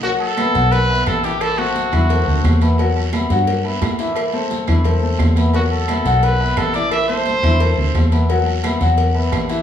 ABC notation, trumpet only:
X:1
M:4/4
L:1/8
Q:1/4=174
K:Ador
V:1 name="Trumpet"
F A3 B2 A G | A F6 z | z8 | z8 |
F A3 B2 A d | e c6 z | z8 |]